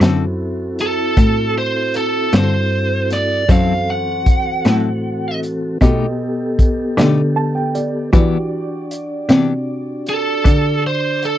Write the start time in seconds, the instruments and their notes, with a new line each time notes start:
Already playing: tonewheel organ C4 E4 F#4 A4, grand piano E4 F#4 C5
0.01 cello F#2, clean electric guitar D3 C4 F#4 A4, snare, closed hi-hat
0.79 lead electric guitar A4, closed hi-hat
1.17 cello A2, kick, closed hi-hat
1.58 lead electric guitar C5
1.94 lead electric guitar A4, closed hi-hat
2.33 cello G2, clean electric guitar D3 C4 F#4 A4, lead electric guitar C5, snare, closed hi-hat
3.10 lead electric guitar D5, snare, closed hi-hat
3.48 cello F#2, tonewheel organ E3 C4 F#4 A4, clean electric guitar F#3 C4 E4 A4, grand piano F#4 A4 C5, lead electric guitar F5, kick, closed hi-hat
3.90 lead electric guitar F#5
4.26 kick, closed hi-hat
4.65 cello A2, clean electric guitar F#3 C4 E4 A4, snare, closed hi-hat
5.43 closed hi-hat
5.81 cello B2, clean electric guitar B2 A3 D#4 G4, tonewheel organ B3 G4 A4, grand piano G4 A4 D#5, kick, closed hi-hat
6.59 kick, closed hi-hat
6.98 clean electric guitar B2 A3 D#4 G4, cello D3, snare, closed hi-hat
7.36 grand piano A5
7.55 grand piano G5
7.75 grand piano D5, closed hi-hat
8.12 cello E3, clean electric guitar E3 B3 D4 G4, tonewheel organ D4 D5, grand piano F#4 G4 D5, kick, closed hi-hat
8.91 closed hi-hat
9.29 cello C3, clean electric guitar E3 B3 D4 G4, snare, closed hi-hat
10.06 lead electric guitar A4, closed hi-hat
10.45 cello D3, kick, closed hi-hat
10.87 lead electric guitar C5
11.22 lead electric guitar A4, closed hi-hat